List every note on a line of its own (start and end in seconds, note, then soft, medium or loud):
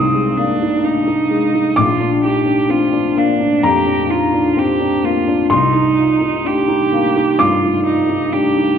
0.00 1.79 C2 medium
0.00 0.15 G#3 medium
0.00 0.39 C4 medium
0.00 0.85 D4 soft
0.00 0.62 D#4 medium
0.00 1.79 F4 soft
0.00 1.72 D#6 loud
0.15 0.51 G#3 medium
0.37 0.61 A#3 soft
0.37 0.86 D4 medium
0.62 0.98 D#4 medium
0.84 1.07 D4 soft
0.84 1.79 D#4 medium
1.08 1.44 D#4 medium
1.31 1.68 G#3 medium
1.54 1.77 D#4 medium
1.76 3.59 A#1 medium
1.76 2.23 F4 medium
1.76 3.59 D6 loud
2.00 2.37 D4 medium
2.24 2.47 D#4 soft
2.24 2.72 G4 medium
2.46 2.83 D4 medium
2.70 2.93 C4 medium
2.70 3.19 F4 medium
2.93 3.30 D4 medium
3.16 3.54 A#3 medium
3.16 3.66 D4 medium
3.40 3.77 D4 medium
3.63 4.00 F2 medium
3.63 4.12 G4 medium
3.63 4.53 A#5 medium
3.87 4.24 D4 medium
4.10 4.33 D#4 medium
4.10 4.60 F4 medium
4.34 4.71 D4 medium
4.57 4.80 C4 medium
4.57 5.06 G4 medium
4.80 5.18 D4 medium
5.04 5.41 A#3 medium
5.04 5.51 F4 medium
5.28 5.51 D4 medium
5.50 7.34 C2 medium
5.50 6.48 D#4 medium
5.50 7.34 C6 medium
5.74 6.11 D#4 medium
5.97 6.21 F4 medium
6.21 6.59 D#4 medium
6.45 6.68 D4 soft
6.45 7.41 G4 medium
6.68 7.05 D#4 medium
6.92 7.29 A#3 medium
7.16 7.53 D#4 medium
7.39 7.76 G2 medium
7.39 7.86 F4 medium
7.39 8.78 D6 loud
7.64 8.00 D#4 medium
7.86 8.34 D#4 medium
7.86 8.09 F4 medium
8.09 8.46 D#4 medium
8.33 8.56 D4 soft
8.33 8.78 G4 medium
8.57 8.78 D#4 medium